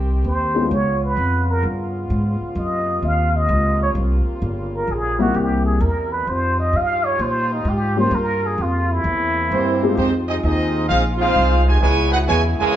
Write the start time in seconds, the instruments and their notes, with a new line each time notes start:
Already playing: upright bass C2, trombone section D#3 C4 G4
0.24 upright bass D#2, muted trumpet C5
0.54 grand piano G#3 B3 C#4 D#4 F4
0.71 upright bass C#2, trombone section C#3 B3 F4, muted trumpet C#5
1.05 muted trumpet B4
1.17 upright bass F2
1.50 muted trumpet A#4
1.63 upright bass G2
2.10 upright bass G#2
2.41 muted upright bass stroke
2.55 upright bass F#2, trombone section C3 A#3, muted trumpet D#5
3.02 upright bass D#2, muted trumpet F5
3.36 muted trumpet D#5
3.49 upright bass C#2
3.82 muted trumpet C#5
3.95 upright bass C2
4.27 muted upright bass stroke
4.41 upright bass G1, trombone section C#3 G3
4.76 muted trumpet A#4
4.87 upright bass A#1, muted trumpet G#4
5.19 grand piano G3 A#3 C4 E4 G4, muted trumpet F#4
5.34 upright bass C2, trombone section C3 E4, muted trumpet G4
5.66 muted trumpet G#4
5.80 upright bass E2, muted trumpet A#4
6.12 muted trumpet B4
6.27 upright bass F2, trombone section D#3 F3 F4, muted trumpet C5
6.59 muted trumpet D#5
6.73 upright bass G2, muted trumpet F5
7.05 muted trumpet C#5
7.19 upright bass A#2, muted trumpet C5
7.52 muted trumpet D#4
7.65 upright bass G#2, muted trumpet G4
7.97 grand piano G3 A#3 C#4 F4 G4, muted trumpet C5
8.11 upright bass G2, trombone section C#3 A#3, muted trumpet A#4
8.46 muted trumpet G#4
8.58 upright bass F2
8.62 muted trumpet F4
8.92 muted trumpet E4
9.04 upright bass E2, trombone section A#3 C4 E4
9.50 upright bass G2, trombone section E3 G3 C4, trumpet section A#3 E4 G4 C5
9.83 grand piano G#3 C4 D#4 F4 G4
9.97 upright bass F2, trombone section D#3 F3 G#3 C4 D#4 F4, trumpet section G#3 D#4 G4 C5
10.28 trombone section G#3 C4 D#4, trumpet section C4 G4 G#4 D#5
10.43 upright bass D#2, trombone section G#3 C4 D#4, trumpet section C4 G4 G#4 D#5
10.88 upright bass A#1, trombone section G#3 C4 F4, trumpet section D#4 G#4 C5 F5
11.17 trombone section G#3 C4 F4, trumpet section D#4 G#4 C5 F5
11.36 upright bass C2
11.65 trombone section C3 D#3 G#3, trumpet section D#4 G4 C5 G#5
11.80 upright bass C#2, trombone section B2 C#3 E3 G#3 B3 E4, trumpet section E4 B4 C#5 G#5
12.11 trumpet section D#4 G#4 B4 F#5, trombone section F#4
12.27 upright bass E2, trombone section B2 E3 G#3, trumpet section E4 B4 C#5 G#5
12.59 trombone section C#3 E3 G#3, trumpet section E4 A#4 C#5 G#5, muted upright bass stroke